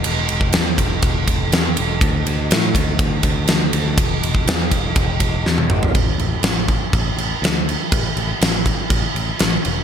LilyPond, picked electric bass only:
\new Staff \with { instrumentName = "Picked electric bass" } { \clef bass \time 4/4 \key d \dorian \tempo 4 = 122 e,,8 e,,8 e,8 e,,8 e,,4 e,8 e,,8 | d,8 d,8 a,8 d,8 d,8 d,8 d,8 d,8 | e,,8 e,,8 e,8 e,,8 e,,4 e,8 gis,,8 | a,,8 a,,8 a,,4 a,,8 a,,8 d,4 |
a,,8 a,,8 a,,4 a,,8 a,,8 a,,8 e,,8 | }